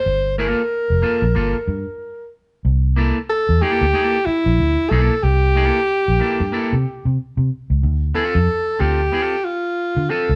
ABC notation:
X:1
M:4/4
L:1/16
Q:"Swing 16ths" 1/4=93
K:Dm
V:1 name="Alto saxophone"
c2 B12 z2 | z4 A2 G4 E4 A2 | G12 z4 | z2 A4 G4 F4 A2 |]
V:2 name="Clean electric guitar"
z2 [B,FA]2 z2 [B,FA] z [B,FA] z6 z | z2 [B,EA] z3 [B,EA]2 [B,EA]2 z4 [B,EA]2 | z2 [B,EA]2 z2 [B,EA] z [B,EA] z6 z | z2 [CFA]2 z2 [CFA] z [CFA]2 z4 [CFA] z |]
V:3 name="Fingered electric bass" clef=bass
G,,,3 z2 F,,, z B,,, G,,, z G,, z4 z | C,,3 z2 E,, z D,, z3 B,,, D,, z =B,,, z | C,,3 z2 B,,, z G,, z C, z C, z C, z ^C,, | D,,2 z F,, z2 D,,2 z4 z D, z ^C,, |]